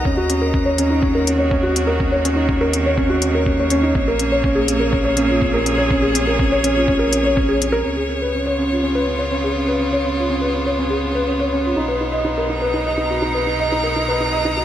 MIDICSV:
0, 0, Header, 1, 5, 480
1, 0, Start_track
1, 0, Tempo, 487805
1, 55, Time_signature, 4, 2, 24, 8
1, 14414, End_track
2, 0, Start_track
2, 0, Title_t, "String quartet"
2, 0, Program_c, 0, 48
2, 0, Note_on_c, 0, 75, 61
2, 0, Note_on_c, 0, 82, 68
2, 54, Note_on_c, 0, 51, 65
2, 165, Note_on_c, 0, 58, 73
2, 666, Note_on_c, 0, 66, 72
2, 1248, Note_off_c, 0, 82, 0
2, 1359, Note_on_c, 0, 73, 65
2, 1552, Note_off_c, 0, 75, 0
2, 3893, Note_off_c, 0, 66, 0
2, 3894, Note_off_c, 0, 51, 0
2, 3897, Note_on_c, 0, 46, 78
2, 4517, Note_on_c, 0, 68, 69
2, 7728, Note_on_c, 0, 49, 52
2, 7736, Note_off_c, 0, 46, 0
2, 7740, Note_off_c, 0, 58, 0
2, 8029, Note_on_c, 0, 59, 57
2, 8314, Note_on_c, 0, 65, 59
2, 8508, Note_off_c, 0, 68, 0
2, 11571, Note_off_c, 0, 49, 0
2, 11576, Note_on_c, 0, 47, 71
2, 11968, Note_on_c, 0, 63, 63
2, 12222, Note_off_c, 0, 65, 0
2, 12323, Note_on_c, 0, 82, 69
2, 12692, Note_off_c, 0, 73, 0
2, 14414, Note_off_c, 0, 47, 0
2, 14414, Note_off_c, 0, 59, 0
2, 14414, Note_off_c, 0, 63, 0
2, 14414, Note_off_c, 0, 82, 0
2, 14414, End_track
3, 0, Start_track
3, 0, Title_t, "Felt piano"
3, 0, Program_c, 1, 0
3, 0, Control_c, 1, 64, 127
3, 50, Note_on_c, 1, 61, 85
3, 68, Control_c, 1, 64, 0
3, 121, Note_off_c, 1, 61, 0
3, 168, Note_on_c, 1, 66, 90
3, 247, Control_c, 1, 64, 127
3, 285, Note_on_c, 1, 61, 69
3, 286, Note_off_c, 1, 66, 0
3, 358, Note_off_c, 1, 61, 0
3, 408, Note_on_c, 1, 70, 86
3, 525, Note_off_c, 1, 70, 0
3, 527, Note_on_c, 1, 61, 66
3, 599, Note_off_c, 1, 61, 0
3, 644, Note_on_c, 1, 73, 91
3, 763, Note_off_c, 1, 73, 0
3, 765, Note_on_c, 1, 61, 89
3, 884, Note_off_c, 1, 61, 0
3, 890, Note_on_c, 1, 63, 66
3, 1001, Note_on_c, 1, 61, 90
3, 1006, Note_off_c, 1, 63, 0
3, 1122, Note_off_c, 1, 61, 0
3, 1130, Note_on_c, 1, 70, 83
3, 1246, Note_off_c, 1, 70, 0
3, 1249, Note_on_c, 1, 61, 67
3, 1320, Note_off_c, 1, 61, 0
3, 1366, Note_on_c, 1, 73, 83
3, 1439, Note_off_c, 1, 73, 0
3, 1480, Note_on_c, 1, 61, 93
3, 1556, Note_off_c, 1, 61, 0
3, 1603, Note_on_c, 1, 66, 88
3, 1723, Note_off_c, 1, 66, 0
3, 1731, Note_on_c, 1, 61, 69
3, 1801, Note_off_c, 1, 61, 0
3, 1842, Note_on_c, 1, 70, 94
3, 1960, Note_on_c, 1, 61, 74
3, 1962, Note_off_c, 1, 70, 0
3, 2036, Note_off_c, 1, 61, 0
3, 2086, Note_on_c, 1, 73, 85
3, 2204, Note_off_c, 1, 73, 0
3, 2206, Note_on_c, 1, 61, 99
3, 2320, Note_on_c, 1, 63, 70
3, 2324, Note_off_c, 1, 61, 0
3, 2441, Note_off_c, 1, 63, 0
3, 2445, Note_on_c, 1, 61, 89
3, 2564, Note_off_c, 1, 61, 0
3, 2568, Note_on_c, 1, 70, 99
3, 2685, Note_off_c, 1, 70, 0
3, 2689, Note_on_c, 1, 61, 71
3, 2760, Note_off_c, 1, 61, 0
3, 2815, Note_on_c, 1, 73, 87
3, 2883, Note_off_c, 1, 73, 0
3, 2926, Note_on_c, 1, 61, 101
3, 2999, Note_off_c, 1, 61, 0
3, 3046, Note_on_c, 1, 66, 93
3, 3164, Note_off_c, 1, 66, 0
3, 3167, Note_on_c, 1, 61, 72
3, 3239, Note_off_c, 1, 61, 0
3, 3294, Note_on_c, 1, 70, 92
3, 3408, Note_off_c, 1, 70, 0
3, 3414, Note_on_c, 1, 61, 78
3, 3482, Note_off_c, 1, 61, 0
3, 3537, Note_on_c, 1, 73, 84
3, 3650, Note_off_c, 1, 73, 0
3, 3652, Note_on_c, 1, 61, 99
3, 3767, Note_off_c, 1, 61, 0
3, 3769, Note_on_c, 1, 63, 78
3, 3885, Note_on_c, 1, 61, 88
3, 3886, Note_off_c, 1, 63, 0
3, 3909, Control_c, 1, 64, 0
3, 4004, Note_off_c, 1, 61, 0
3, 4013, Note_on_c, 1, 70, 92
3, 4096, Control_c, 1, 64, 127
3, 4128, Note_off_c, 1, 70, 0
3, 4128, Note_on_c, 1, 61, 75
3, 4200, Note_off_c, 1, 61, 0
3, 4250, Note_on_c, 1, 73, 95
3, 4321, Note_off_c, 1, 73, 0
3, 4359, Note_on_c, 1, 61, 92
3, 4435, Note_off_c, 1, 61, 0
3, 4481, Note_on_c, 1, 68, 97
3, 4602, Note_off_c, 1, 68, 0
3, 4604, Note_on_c, 1, 61, 67
3, 4678, Note_off_c, 1, 61, 0
3, 4721, Note_on_c, 1, 70, 91
3, 4838, Note_on_c, 1, 61, 80
3, 4842, Note_off_c, 1, 70, 0
3, 4915, Note_off_c, 1, 61, 0
3, 4961, Note_on_c, 1, 73, 91
3, 5080, Note_on_c, 1, 61, 93
3, 5082, Note_off_c, 1, 73, 0
3, 5201, Note_off_c, 1, 61, 0
3, 5203, Note_on_c, 1, 65, 68
3, 5323, Note_off_c, 1, 65, 0
3, 5327, Note_on_c, 1, 61, 89
3, 5445, Note_off_c, 1, 61, 0
3, 5448, Note_on_c, 1, 70, 89
3, 5562, Note_on_c, 1, 61, 78
3, 5565, Note_off_c, 1, 70, 0
3, 5637, Note_off_c, 1, 61, 0
3, 5688, Note_on_c, 1, 73, 96
3, 5760, Note_off_c, 1, 73, 0
3, 5807, Note_on_c, 1, 61, 93
3, 5879, Note_off_c, 1, 61, 0
3, 5925, Note_on_c, 1, 68, 95
3, 6044, Note_off_c, 1, 68, 0
3, 6047, Note_on_c, 1, 61, 76
3, 6119, Note_off_c, 1, 61, 0
3, 6172, Note_on_c, 1, 70, 92
3, 6287, Note_off_c, 1, 70, 0
3, 6298, Note_on_c, 1, 61, 71
3, 6365, Note_off_c, 1, 61, 0
3, 6415, Note_on_c, 1, 73, 99
3, 6527, Note_on_c, 1, 61, 98
3, 6529, Note_off_c, 1, 73, 0
3, 6644, Note_on_c, 1, 65, 70
3, 6645, Note_off_c, 1, 61, 0
3, 6762, Note_on_c, 1, 61, 102
3, 6763, Note_off_c, 1, 65, 0
3, 6879, Note_on_c, 1, 70, 97
3, 6882, Note_off_c, 1, 61, 0
3, 7001, Note_off_c, 1, 70, 0
3, 7010, Note_on_c, 1, 61, 73
3, 7081, Note_off_c, 1, 61, 0
3, 7124, Note_on_c, 1, 73, 91
3, 7198, Note_off_c, 1, 73, 0
3, 7239, Note_on_c, 1, 61, 102
3, 7315, Note_off_c, 1, 61, 0
3, 7365, Note_on_c, 1, 68, 93
3, 7484, Note_off_c, 1, 68, 0
3, 7486, Note_on_c, 1, 61, 73
3, 7559, Note_off_c, 1, 61, 0
3, 7599, Note_on_c, 1, 70, 104
3, 7721, Note_off_c, 1, 70, 0
3, 7722, Note_on_c, 1, 61, 71
3, 7748, Control_c, 1, 64, 0
3, 7797, Note_off_c, 1, 61, 0
3, 7840, Note_on_c, 1, 68, 77
3, 7918, Control_c, 1, 64, 127
3, 7959, Note_on_c, 1, 61, 57
3, 7961, Note_off_c, 1, 68, 0
3, 8035, Note_off_c, 1, 61, 0
3, 8088, Note_on_c, 1, 71, 76
3, 8205, Note_off_c, 1, 71, 0
3, 8209, Note_on_c, 1, 61, 58
3, 8280, Note_off_c, 1, 61, 0
3, 8325, Note_on_c, 1, 73, 78
3, 8444, Note_off_c, 1, 73, 0
3, 8444, Note_on_c, 1, 61, 76
3, 8563, Note_off_c, 1, 61, 0
3, 8569, Note_on_c, 1, 65, 52
3, 8686, Note_off_c, 1, 65, 0
3, 8687, Note_on_c, 1, 61, 80
3, 8805, Note_off_c, 1, 61, 0
3, 8807, Note_on_c, 1, 71, 80
3, 8923, Note_on_c, 1, 61, 56
3, 8925, Note_off_c, 1, 71, 0
3, 8997, Note_off_c, 1, 61, 0
3, 9041, Note_on_c, 1, 73, 70
3, 9116, Note_off_c, 1, 73, 0
3, 9163, Note_on_c, 1, 61, 80
3, 9237, Note_off_c, 1, 61, 0
3, 9288, Note_on_c, 1, 68, 70
3, 9404, Note_on_c, 1, 61, 60
3, 9405, Note_off_c, 1, 68, 0
3, 9478, Note_off_c, 1, 61, 0
3, 9525, Note_on_c, 1, 71, 76
3, 9643, Note_on_c, 1, 61, 62
3, 9644, Note_off_c, 1, 71, 0
3, 9717, Note_off_c, 1, 61, 0
3, 9770, Note_on_c, 1, 73, 77
3, 9886, Note_off_c, 1, 73, 0
3, 9887, Note_on_c, 1, 61, 74
3, 10005, Note_off_c, 1, 61, 0
3, 10013, Note_on_c, 1, 65, 59
3, 10128, Note_off_c, 1, 65, 0
3, 10131, Note_on_c, 1, 61, 76
3, 10247, Note_off_c, 1, 61, 0
3, 10247, Note_on_c, 1, 71, 78
3, 10365, Note_off_c, 1, 71, 0
3, 10376, Note_on_c, 1, 61, 59
3, 10444, Note_off_c, 1, 61, 0
3, 10493, Note_on_c, 1, 73, 73
3, 10562, Note_off_c, 1, 73, 0
3, 10613, Note_on_c, 1, 61, 82
3, 10682, Note_off_c, 1, 61, 0
3, 10728, Note_on_c, 1, 68, 76
3, 10845, Note_off_c, 1, 68, 0
3, 10849, Note_on_c, 1, 61, 59
3, 10920, Note_off_c, 1, 61, 0
3, 10969, Note_on_c, 1, 71, 79
3, 11086, Note_off_c, 1, 71, 0
3, 11094, Note_on_c, 1, 61, 67
3, 11163, Note_off_c, 1, 61, 0
3, 11217, Note_on_c, 1, 73, 76
3, 11330, Note_off_c, 1, 73, 0
3, 11340, Note_on_c, 1, 61, 81
3, 11451, Note_off_c, 1, 61, 0
3, 11458, Note_on_c, 1, 65, 67
3, 11570, Note_off_c, 1, 65, 0
3, 11575, Note_on_c, 1, 63, 78
3, 11587, Control_c, 1, 64, 0
3, 11689, Note_off_c, 1, 63, 0
3, 11692, Note_on_c, 1, 71, 75
3, 11761, Control_c, 1, 64, 127
3, 11807, Note_off_c, 1, 71, 0
3, 11814, Note_on_c, 1, 63, 64
3, 11883, Note_off_c, 1, 63, 0
3, 11927, Note_on_c, 1, 75, 78
3, 11999, Note_off_c, 1, 75, 0
3, 12050, Note_on_c, 1, 63, 75
3, 12121, Note_off_c, 1, 63, 0
3, 12178, Note_on_c, 1, 70, 84
3, 12290, Note_off_c, 1, 70, 0
3, 12295, Note_on_c, 1, 63, 60
3, 12363, Note_off_c, 1, 63, 0
3, 12412, Note_on_c, 1, 71, 78
3, 12527, Note_off_c, 1, 71, 0
3, 12534, Note_on_c, 1, 63, 70
3, 12603, Note_off_c, 1, 63, 0
3, 12657, Note_on_c, 1, 75, 75
3, 12767, Note_on_c, 1, 63, 71
3, 12770, Note_off_c, 1, 75, 0
3, 12885, Note_off_c, 1, 63, 0
3, 12894, Note_on_c, 1, 66, 55
3, 13008, Note_off_c, 1, 66, 0
3, 13009, Note_on_c, 1, 63, 78
3, 13126, Note_off_c, 1, 63, 0
3, 13132, Note_on_c, 1, 71, 73
3, 13247, Note_off_c, 1, 71, 0
3, 13252, Note_on_c, 1, 63, 60
3, 13321, Note_off_c, 1, 63, 0
3, 13379, Note_on_c, 1, 75, 84
3, 13445, Note_off_c, 1, 75, 0
3, 13501, Note_on_c, 1, 63, 80
3, 13566, Note_off_c, 1, 63, 0
3, 13613, Note_on_c, 1, 70, 79
3, 13728, Note_off_c, 1, 70, 0
3, 13739, Note_on_c, 1, 63, 62
3, 13805, Note_off_c, 1, 63, 0
3, 13858, Note_on_c, 1, 71, 80
3, 13970, Note_off_c, 1, 71, 0
3, 13976, Note_on_c, 1, 63, 62
3, 14044, Note_off_c, 1, 63, 0
3, 14095, Note_on_c, 1, 75, 83
3, 14209, Note_off_c, 1, 75, 0
3, 14219, Note_on_c, 1, 63, 79
3, 14331, Note_off_c, 1, 63, 0
3, 14332, Note_on_c, 1, 66, 57
3, 14414, Note_off_c, 1, 66, 0
3, 14414, End_track
4, 0, Start_track
4, 0, Title_t, "Sub bass"
4, 0, Program_c, 2, 38
4, 54, Note_on_c, 2, 39, 81
4, 3870, Note_off_c, 2, 39, 0
4, 3887, Note_on_c, 2, 34, 85
4, 7707, Note_off_c, 2, 34, 0
4, 7736, Note_on_c, 2, 37, 80
4, 11551, Note_off_c, 2, 37, 0
4, 11574, Note_on_c, 2, 35, 80
4, 14414, Note_off_c, 2, 35, 0
4, 14414, End_track
5, 0, Start_track
5, 0, Title_t, "Drums"
5, 52, Note_on_c, 9, 36, 89
5, 150, Note_off_c, 9, 36, 0
5, 292, Note_on_c, 9, 42, 57
5, 390, Note_off_c, 9, 42, 0
5, 531, Note_on_c, 9, 36, 100
5, 629, Note_off_c, 9, 36, 0
5, 771, Note_on_c, 9, 42, 59
5, 869, Note_off_c, 9, 42, 0
5, 1010, Note_on_c, 9, 36, 87
5, 1108, Note_off_c, 9, 36, 0
5, 1253, Note_on_c, 9, 42, 59
5, 1351, Note_off_c, 9, 42, 0
5, 1489, Note_on_c, 9, 36, 94
5, 1587, Note_off_c, 9, 36, 0
5, 1733, Note_on_c, 9, 42, 63
5, 1831, Note_off_c, 9, 42, 0
5, 1969, Note_on_c, 9, 36, 85
5, 2067, Note_off_c, 9, 36, 0
5, 2215, Note_on_c, 9, 42, 55
5, 2313, Note_off_c, 9, 42, 0
5, 2448, Note_on_c, 9, 36, 94
5, 2546, Note_off_c, 9, 36, 0
5, 2691, Note_on_c, 9, 42, 52
5, 2789, Note_off_c, 9, 42, 0
5, 2928, Note_on_c, 9, 36, 88
5, 3026, Note_off_c, 9, 36, 0
5, 3167, Note_on_c, 9, 42, 57
5, 3265, Note_off_c, 9, 42, 0
5, 3408, Note_on_c, 9, 36, 81
5, 3507, Note_off_c, 9, 36, 0
5, 3645, Note_on_c, 9, 42, 58
5, 3743, Note_off_c, 9, 42, 0
5, 3889, Note_on_c, 9, 36, 92
5, 3987, Note_off_c, 9, 36, 0
5, 4128, Note_on_c, 9, 42, 56
5, 4226, Note_off_c, 9, 42, 0
5, 4369, Note_on_c, 9, 36, 97
5, 4467, Note_off_c, 9, 36, 0
5, 4607, Note_on_c, 9, 42, 59
5, 4706, Note_off_c, 9, 42, 0
5, 4850, Note_on_c, 9, 36, 87
5, 4948, Note_off_c, 9, 36, 0
5, 5086, Note_on_c, 9, 42, 55
5, 5184, Note_off_c, 9, 42, 0
5, 5331, Note_on_c, 9, 36, 83
5, 5430, Note_off_c, 9, 36, 0
5, 5572, Note_on_c, 9, 42, 54
5, 5670, Note_off_c, 9, 42, 0
5, 5812, Note_on_c, 9, 36, 96
5, 5910, Note_off_c, 9, 36, 0
5, 6053, Note_on_c, 9, 42, 56
5, 6151, Note_off_c, 9, 42, 0
5, 6292, Note_on_c, 9, 36, 96
5, 6390, Note_off_c, 9, 36, 0
5, 6535, Note_on_c, 9, 42, 62
5, 6633, Note_off_c, 9, 42, 0
5, 6771, Note_on_c, 9, 36, 87
5, 6870, Note_off_c, 9, 36, 0
5, 7012, Note_on_c, 9, 42, 62
5, 7110, Note_off_c, 9, 42, 0
5, 7253, Note_on_c, 9, 36, 87
5, 7351, Note_off_c, 9, 36, 0
5, 7495, Note_on_c, 9, 42, 59
5, 7594, Note_off_c, 9, 42, 0
5, 14414, End_track
0, 0, End_of_file